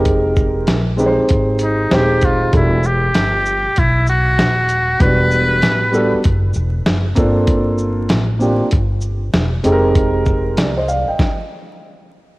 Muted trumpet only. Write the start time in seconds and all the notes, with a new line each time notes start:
1.63 D#4
1.94 G4
2.25 F4
2.55 E4
2.86 G4
3.79 E4
4.09 F#4
5.01 B4